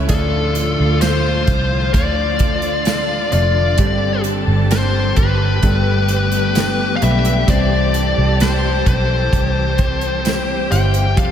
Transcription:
Already playing: grand piano A3 C#4 E4 A4 C#5, clean electric guitar A3 C#4 E4, string section A3
0.08 fingered electric bass D2, grand piano A2 A3 D4 F4 A4 D5, clean electric guitar D3 A4, string section D3 F3 F4, violin section F4 F5, lead electric guitar A4, kick, closed hi-hat
0.55 closed hi-hat
0.80 fingered electric bass D2
1.01 clean electric guitar F4, lead electric guitar C5, snare, closed hi-hat, tambourine
1.47 fingered electric bass C2, kick, closed hi-hat
1.94 fingered electric bass D2, clean electric guitar A3, string section F4, lead electric guitar D5, kick, closed hi-hat
2.39 clean electric guitar A4, kick, closed hi-hat
2.62 closed hi-hat
2.85 clean electric guitar D4 F4 A4, snare, closed hi-hat, tambourine
3.32 fingered electric bass F1, grand piano A3 D4 F4 A4 D5, lead electric guitar D5, closed hi-hat
3.78 fingered electric bass G1, grand piano G2 D3 G3 C4 D4 G4 D5, clean electric guitar G3, string section G3 C4 G4, violin section A4 A5, kick, closed hi-hat
4.24 closed hi-hat
4.47 fingered electric bass G1
4.71 clean electric guitar G4, lead electric guitar C5, snare, closed hi-hat, tambourine
5.16 fingered electric bass G1, lead electric guitar B4, kick, closed hi-hat
5.62 fingered electric bass G1, grand piano G2 D3 A3 B3 D4 G4 A4, clean electric guitar G3, string section A3 B3, violin section G4 G5, kick, closed hi-hat
6.08 clean electric guitar B4, closed hi-hat
6.32 closed hi-hat
6.55 clean electric guitar D4 G4 B4, snare, closed hi-hat, tambourine
6.96 lead electric guitar F5
7.01 fingered electric bass B1, grand piano A3 B3 D4 G4 B4, lead electric guitar E5, closed hi-hat
7.25 closed hi-hat
7.47 fingered electric bass C2, grand piano G2 G3 C4 E4 G4 C5, string section E3 G3 C4, violin section A4 A5, clean electric guitar C5, lead electric guitar D5, kick, closed hi-hat
7.94 closed hi-hat
8.18 fingered electric bass C2
8.40 clean electric guitar E4, lead electric guitar C5, snare, closed hi-hat, tambourine
8.86 fingered electric bass B1, lead electric guitar C5, kick, closed hi-hat
9.33 fingered electric bass C2, clean electric guitar G3, kick, closed hi-hat
9.78 clean electric guitar C5, kick, closed hi-hat
10.01 closed hi-hat
10.23 clean electric guitar C4 E4 C5, violin section G4 G5, snare, closed hi-hat, tambourine
10.70 fingered electric bass G1, grand piano G3 C4 E4 G4 C5, lead electric guitar G5, closed hi-hat
10.94 closed hi-hat
11.16 fingered electric bass F1, grand piano C3 G3 C4 F4 G4 C5, clean electric guitar F3 C5, string section F3, violin section A4 A5, lead electric guitar F5, kick, closed hi-hat

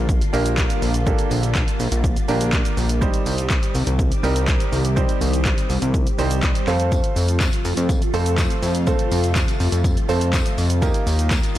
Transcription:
Already playing: analog synth bass A#1, string machine D3 G3 A#3 F4
0.09 kick, shaker
0.21 closed hi-hat, shaker
0.33 analog synth bass A#1, grand piano A#3 D4 F4 G4 A#4, open hi-hat, shaker
0.46 closed hi-hat, shaker
0.58 kick, clap, shaker
0.70 closed hi-hat, shaker
0.82 analog synth bass A#1, open hi-hat, shaker
0.94 closed hi-hat, shaker
1.06 grand piano A#3 D4 F4 G4 A4, kick, shaker
1.19 closed hi-hat, shaker
1.31 analog synth bass A#1, open hi-hat, shaker
1.43 closed hi-hat, shaker
1.55 kick, clap, shaker
1.68 closed hi-hat, shaker
1.80 analog synth bass A#1, open hi-hat, shaker
1.92 analog synth bass A#1, closed hi-hat, shaker
2.04 kick, shaker
2.17 closed hi-hat, shaker
2.28 analog synth bass A#1, grand piano A#3 D4 F4 G4 A#4, open hi-hat, shaker
2.41 closed hi-hat, shaker
2.53 kick, clap, shaker
2.65 closed hi-hat, shaker
2.77 analog synth bass A#1, open hi-hat, shaker
2.89 closed hi-hat, shaker
3.01 string machine D#3 C4 G4, grand piano G3 C4 D#4 G4 C5, kick, shaker
3.14 closed hi-hat, shaker
3.26 analog synth bass C2, open hi-hat, shaker
3.38 closed hi-hat, shaker
3.50 kick, clap, shaker
3.63 closed hi-hat, shaker
3.75 analog synth bass C2, open hi-hat, shaker
3.87 analog synth bass C2, closed hi-hat, shaker
3.99 kick, shaker
4.12 closed hi-hat, shaker
4.23 analog synth bass C2, grand piano G3 C4 D#4 G4 A#4, open hi-hat, shaker
4.36 closed hi-hat, shaker
4.48 kick, clap, shaker
4.60 closed hi-hat, shaker
4.72 analog synth bass C2, open hi-hat, shaker
4.85 closed hi-hat, shaker
4.96 grand piano G3 C4 D#4 G4 C5, kick, shaker
5.09 closed hi-hat, shaker
5.21 analog synth bass C2, open hi-hat, shaker
5.33 closed hi-hat, shaker
5.45 kick, clap, shaker
5.58 closed hi-hat, shaker
5.70 analog synth bass C2, open hi-hat, shaker
5.82 analog synth bass C2, closed hi-hat, shaker
5.94 kick, shaker
6.07 closed hi-hat, shaker
6.19 analog synth bass C2, grand piano G3 C4 D#4 G4 C5, open hi-hat, shaker
6.31 closed hi-hat, shaker
6.43 kick, clap, shaker
6.55 closed hi-hat, shaker
6.67 analog synth bass F2, string machine C3 F3 A3 F4, grand piano A3 C4 F4 A4 C5, clap, open hi-hat, shaker
6.80 closed hi-hat, shaker
6.92 kick, tambourine, shaker
7.04 closed hi-hat, shaker
7.16 analog synth bass F2, open hi-hat, tambourine, shaker
7.28 closed hi-hat, tambourine, shaker
7.40 kick, clap, tambourine, shaker
7.53 closed hi-hat, tambourine, shaker
7.65 analog synth bass F2, open hi-hat, tambourine, shaker
7.77 analog synth bass F2, closed hi-hat, tambourine, shaker
7.89 kick, tambourine, shaker
8.02 closed hi-hat, shaker
8.13 analog synth bass F2, grand piano A3 C4 F4 A4 C5, open hi-hat, tambourine, shaker
8.26 closed hi-hat, shaker
8.38 kick, clap, tambourine, shaker
8.50 closed hi-hat, shaker
8.62 analog synth bass F2, open hi-hat, tambourine, shaker
8.75 closed hi-hat, tambourine, shaker
8.87 grand piano A3 C4 F4 A4 C5, kick, tambourine, shaker
8.99 closed hi-hat, shaker
9.11 analog synth bass F2, open hi-hat, tambourine, shaker
9.24 closed hi-hat, tambourine, shaker
9.36 kick, clap, tambourine, shaker
9.48 closed hi-hat, tambourine, shaker
9.60 analog synth bass F2, open hi-hat, tambourine, shaker
9.72 analog synth bass F2, closed hi-hat, tambourine, shaker
9.84 kick, tambourine, shaker
9.97 closed hi-hat, shaker
10.09 analog synth bass F2, grand piano A3 C4 F4 A4 C5, open hi-hat, tambourine, shaker
10.21 closed hi-hat, shaker
10.33 kick, clap, tambourine, shaker
10.46 closed hi-hat, shaker
10.58 analog synth bass F2, open hi-hat, tambourine, shaker
10.70 closed hi-hat, shaker
10.82 string machine D#3 G3 A#3 F4, grand piano A#3 D#4 F4 G4 A#4, kick, tambourine, shaker
10.94 closed hi-hat, shaker
11.07 analog synth bass D#2, open hi-hat, tambourine, shaker
11.19 closed hi-hat, tambourine, shaker
11.31 kick, clap, tambourine, shaker
11.43 closed hi-hat, tambourine, shaker

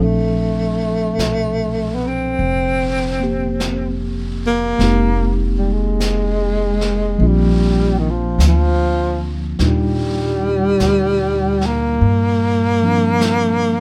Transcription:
Already playing: upright bass A#1
0.00 tine electric piano A#2 F3 C4 D4 A4, tenor saxophone A3
1.18 upright bass B1, brush sweep, snare, hi-hat pedal
1.95 tenor saxophone B3
2.07 tenor saxophone C4
2.38 upright bass F1, brush sweep
3.20 tine electric piano A#3 C4 G4
3.60 brush sweep, snare, hi-hat pedal
4.46 tenor saxophone A#3
4.78 upright bass F1, tine electric piano G#3 A#3 C4, brush sweep, snare
4.82 tine electric piano D#4 G4
5.58 tenor saxophone G3
5.72 tenor saxophone G#3
6.00 brush sweep, snare, hi-hat pedal
6.81 snare
7.18 upright bass A#1, tine electric piano F3 A#3 C4, brush sweep
7.22 tine electric piano D4 F4
7.27 tenor saxophone G3
7.99 tenor saxophone D#3
8.10 tenor saxophone F3
8.38 upright bass D2, brush sweep, snare, hi-hat pedal
8.48 tenor saxophone F3
9.59 upright bass D#2, tine electric piano A#2 G3 D4 D#4 F4, brush sweep, snare
9.65 tenor saxophone G3
10.80 upright bass D2, brush sweep, snare, hi-hat pedal
11.61 snare
11.66 tenor saxophone A#3
12.00 upright bass G2, brush sweep
12.82 tine electric piano F3 C4 D4
13.21 brush sweep, snare, hi-hat pedal

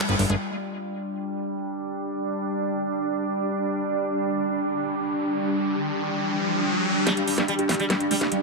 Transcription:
Already playing: ambient pad G3 F4
0.09 analog synth bass G1, acid bass B3, closed hi-hat
0.19 analog synth bass G1, acid bass G3, open hi-hat
0.30 analog synth bass G1, acid bass G#3, closed hi-hat
0.40 ambient pad G3 D4
0.75 ambient pad G4
1.53 ambient pad G5
3.73 riser
7.07 sitar G3, acid bass G3, ambient pad G3 D4, snare, closed hi-hat, riser
7.17 sitar G2, acid bass F3, closed hi-hat
7.27 sitar G2, acid bass G4, open hi-hat
7.38 sitar G2, acid bass G3, snare
7.48 sitar G3, closed hi-hat
7.59 sitar G2, acid bass G4, closed hi-hat
7.69 sitar G2, acid bass F3, snare, open hi-hat
7.80 sitar G3, closed hi-hat
7.90 sitar G2, acid bass G3, snare, closed hi-hat
8.00 sitar G2, acid bass F3, closed hi-hat
8.11 sitar G3, acid bass G#3, open hi-hat
8.21 sitar G2, acid bass B3, snare
8.32 sitar G2, acid bass G3, closed hi-hat

